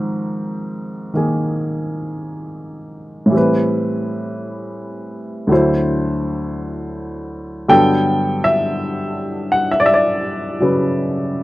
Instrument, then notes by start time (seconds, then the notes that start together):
upright piano
Already playing: G#2 D#3 F3 C4 A#4
1.14 D#3 A#3 G#4
3.26 A2 E3
3.31 G3 C4
3.37 B4
5.47 D2 D3 F#3
5.51 E4 C5
7.68 G2 D3 F#3 B3 A4 G5
8.44 E5
9.52 F#5
9.71 E5
9.80 D5
9.86 E5
9.94 D5
10.60 C#3 F#3 B4